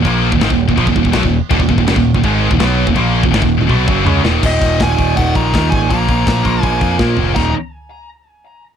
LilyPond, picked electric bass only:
\new Staff \with { instrumentName = "Picked electric bass" } { \clef bass \time 4/4 \key ees \minor \tempo 4 = 164 bes,,8. ees,,16 aes,,16 ees,,8 ees,,16 bes,,16 ees,,16 ees,,16 ees,,16 ces,16 ees,,8 r16 | ees,,16 ees,,16 ees,,16 ees,,16 ges,,16 ees,,8 ees,,16 aes,,8. ees,,16 ces,8. ees,,16 | bes,,8. ees,,16 aes,,16 ees,,8 ees,,16 ces,8 ges,,8 des,8 ees,,8 | ees,,8 ees,,8 ees,,8 ees,,8 ees,,8 bes,,8 ees,8 aes,,8 |
bes,,8 bes,,8 bes,,8 bes,,8 bes,,8 f,8 bes,8 f,,8 | ees,,8 r2. r8 | }